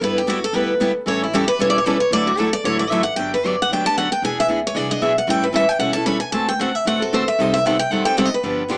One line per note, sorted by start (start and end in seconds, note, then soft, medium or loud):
0.01 0.44 G1 medium
0.01 0.20 G3 medium
0.01 0.20 B3 medium
0.01 0.20 E4 medium
0.01 0.20 G4 medium
0.01 0.17 B4 loud
0.18 0.29 G4 medium
0.27 0.38 G3 loud
0.27 0.38 B3 medium
0.27 0.38 E4 loud
0.27 0.43 F#4 medium
0.27 0.38 G4 loud
0.44 0.56 A4 loud
0.53 0.96 D2 medium
0.53 0.72 G3 medium
0.53 0.72 B3 medium
0.53 0.73 E4 medium
0.53 0.73 G4 medium
0.53 0.82 B4 medium
0.80 0.91 G3 loud
0.80 0.91 B3 loud
0.80 0.91 E4 loud
0.80 0.91 G4 loud
1.06 1.49 A1 medium
1.06 1.25 E3 medium
1.06 1.25 G3 medium
1.06 1.25 C#4 medium
1.06 1.25 E4 medium
1.06 1.25 A4 medium
1.06 1.22 C#5 medium
1.24 1.34 E4 medium
1.33 1.44 E3 loud
1.33 1.44 G3 loud
1.33 1.44 C#4 loud
1.33 1.44 E4 loud
1.33 1.48 G4 medium
1.33 1.44 A4 loud
1.48 1.59 B4 loud
1.59 2.01 E1 medium
1.59 1.78 E3 medium
1.59 1.78 G3 medium
1.59 1.78 C#4 medium
1.59 1.78 E4 medium
1.59 1.78 A4 medium
1.59 1.69 C#5 medium
1.70 1.78 D5 loud
1.78 1.87 C#5 medium
1.86 1.96 E3 loud
1.86 1.96 G3 loud
1.86 1.96 C#4 loud
1.86 1.97 E4 loud
1.86 1.97 A4 loud
1.86 2.00 B4 loud
2.00 2.12 C#5 loud
2.11 2.54 D2 medium
2.11 2.30 D3 medium
2.11 2.31 F#3 medium
2.11 2.31 A3 medium
2.11 2.31 E4 medium
2.11 2.31 F#4 medium
2.11 2.31 A4 medium
2.11 2.27 D5 loud
2.27 2.39 F#4 medium
2.38 2.49 D3 loud
2.38 2.49 F#3 medium
2.38 2.49 A3 loud
2.38 2.49 E4 medium
2.38 2.49 F#4 medium
2.38 2.49 A4 loud
2.38 2.53 A4 loud
2.53 2.65 D5 loud
2.64 3.07 A1 medium
2.64 2.83 D3 medium
2.64 2.83 F#3 medium
2.64 2.83 A3 medium
2.64 2.84 E4 medium
2.64 2.84 F#4 medium
2.64 2.84 A4 medium
2.64 2.79 C#5 loud
2.79 2.90 D5 loud
2.90 3.01 D3 loud
2.90 3.02 F#3 loud
2.90 3.02 A3 loud
2.90 3.02 E4 loud
2.90 3.02 F#4 loud
2.90 3.02 A4 loud
2.90 3.03 E5 loud
3.03 3.16 F#5 loud
3.16 3.59 G1 medium
3.16 3.36 D3 medium
3.16 3.36 F#3 medium
3.16 3.36 B3 medium
3.16 3.36 D4 medium
3.16 3.37 G4 medium
3.16 3.31 G5 medium
3.34 3.47 B4 medium
3.44 3.54 D3 medium
3.44 3.54 F#3 medium
3.44 3.55 B3 medium
3.44 3.55 D4 medium
3.44 3.55 G4 medium
3.44 3.60 D5 loud
3.62 3.72 F#5 loud
3.70 4.12 D2 medium
3.70 3.85 D3 medium
3.70 3.85 F#3 medium
3.70 3.85 B3 medium
3.70 3.85 D4 medium
3.70 3.84 G4 medium
3.70 3.86 G5 medium
3.85 3.96 B3 soft
3.85 3.97 D4 soft
3.85 3.96 G4 medium
3.85 3.97 A5 loud
3.97 4.07 D3 medium
3.97 4.07 F#3 loud
3.97 4.07 B3 medium
3.97 4.07 D4 medium
3.97 4.08 G4 medium
3.97 4.11 F#5 loud
4.12 4.23 G5 loud
4.22 4.44 E1 medium
4.22 4.41 E3 medium
4.22 4.42 B3 medium
4.22 4.42 D4 medium
4.22 4.42 G#4 medium
4.22 4.38 G#5 loud
4.40 4.46 E5 loud
4.48 4.71 D2 medium
4.48 4.59 E3 loud
4.48 4.59 B3 medium
4.48 4.59 D4 medium
4.48 4.59 G#4 loud
4.67 4.76 C#5 loud
4.75 4.97 C2 medium
4.75 4.89 E3 medium
4.75 4.89 B3 medium
4.75 4.89 D4 medium
4.75 4.88 G#4 medium
4.75 4.90 D5 medium
4.89 5.01 B3 medium
4.89 5.01 D4 medium
4.89 5.01 G#4 medium
4.89 5.03 D#5 loud
5.01 5.24 B1 medium
5.01 5.12 E3 medium
5.01 5.12 B3 loud
5.01 5.12 D4 loud
5.01 5.12 G#4 loud
5.01 5.16 E5 medium
5.18 5.29 F#5 medium
5.27 5.70 A1 medium
5.27 5.46 E3 medium
5.27 5.46 G3 medium
5.27 5.46 C#4 medium
5.27 5.46 E4 medium
5.27 5.46 A4 medium
5.27 5.43 G5 loud
5.43 5.55 B4 medium
5.53 5.63 E3 medium
5.53 5.64 G3 medium
5.53 5.64 C#4 medium
5.53 5.64 E4 loud
5.53 5.64 A4 loud
5.53 5.69 E5 loud
5.69 5.79 G5 loud
5.79 6.22 E1 medium
5.79 5.95 E3 medium
5.79 5.95 G3 medium
5.79 5.95 C#4 medium
5.79 5.95 E4 medium
5.79 5.94 A4 medium
5.79 5.93 F#5 loud
5.93 6.05 E4 medium
5.93 6.07 A4 medium
5.93 6.06 A5 loud
5.97 6.06 C#4 soft
6.06 6.17 E3 loud
6.06 6.17 G3 loud
6.06 6.17 C#4 loud
6.06 6.17 E4 loud
6.06 6.17 A4 loud
6.06 6.20 B5 loud
6.20 6.32 G#5 medium
6.32 6.75 D2 medium
6.32 6.51 D3 medium
6.32 6.52 A3 medium
6.32 6.52 C4 medium
6.32 6.52 F#4 medium
6.32 6.52 A4 medium
6.32 6.47 A5 loud
6.49 6.60 G5 loud
6.59 6.69 D3 medium
6.59 6.70 A3 medium
6.59 6.70 C4 medium
6.59 6.70 F#4 loud
6.59 6.70 A4 loud
6.59 6.75 F#5 loud
6.75 6.86 E5 loud
6.85 7.28 A1 medium
6.85 7.00 D3 medium
6.85 7.00 A3 medium
6.85 7.01 C4 medium
6.85 7.00 F#4 medium
6.85 6.99 A4 medium
6.85 7.01 F#5 loud
7.00 7.12 C4 soft
7.00 7.12 F#4 medium
7.00 7.12 A4 medium
7.00 7.13 A4 medium
7.13 7.23 D3 loud
7.13 7.23 A3 medium
7.13 7.23 C4 loud
7.13 7.23 F#4 loud
7.13 7.23 A4 loud
7.13 7.28 C5 medium
7.28 7.41 E5 medium
7.39 7.81 C2 medium
7.39 7.57 C3 medium
7.39 7.57 D#3 medium
7.39 7.57 G3 medium
7.39 7.57 C4 medium
7.39 7.57 G4 medium
7.39 7.58 A4 medium
7.39 7.53 D#5 medium
7.54 7.65 E5 loud
7.65 7.75 C3 medium
7.65 7.75 D#3 loud
7.65 7.76 G3 medium
7.65 7.76 C4 medium
7.65 7.76 G4 loud
7.65 7.76 A4 medium
7.65 7.79 F#5 medium
7.79 7.92 G5 loud
7.90 8.33 G1 medium
7.90 8.06 C3 medium
7.90 8.06 D#3 medium
7.90 8.06 G3 medium
7.90 8.06 C4 medium
7.90 8.05 G4 medium
7.90 8.04 A4 medium
7.90 8.05 F#5 loud
8.05 8.16 G3 soft
8.05 8.17 C4 medium
8.05 8.17 G4 medium
8.05 8.17 A4 medium
8.05 8.17 G5 loud
8.18 8.28 C3 loud
8.18 8.28 D#3 medium
8.18 8.28 G3 loud
8.18 8.28 C4 loud
8.18 8.28 G4 loud
8.18 8.28 A4 loud
8.18 8.25 F#5 medium
8.25 8.34 D#5 loud
8.34 8.72 B4 medium
8.44 8.78 G1 loud
8.44 8.62 D3 medium
8.44 8.62 F3 medium
8.44 8.62 B3 medium
8.44 8.62 D4 medium
8.44 8.62 G4 medium
8.70 8.78 D3 medium
8.70 8.78 F3 medium
8.70 8.78 B3 loud
8.70 8.78 D4 loud
8.70 8.78 G4 medium